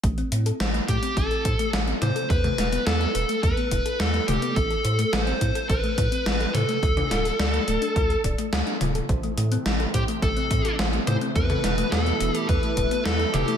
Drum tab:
HH |xxxxxxxxxxxxxxxx|xxxxxxxxxxxxxxxx|xxxxxxxxxxxxxxxx|xxxxxxxxxxxxxxxx|
SD |----o-------o---|--o-o-------o---|----o-------o---|--o-o-------o---|
T2 |--------------o-|-o------------o-|--------------o-|-o------------o-|
BD |o-----o-o-o-----|o-------o-o-----|o-----o-o-o-----|o-------o-o-----|

HH |xxxxxxxxxxxxxxxx|xxxxxxxxxxxxxxxx|
SD |----o-------o---|--o-o-------o---|
T2 |--------------o-|-o------------o-|
BD |o-----o-o-o-----|o-------o-o-----|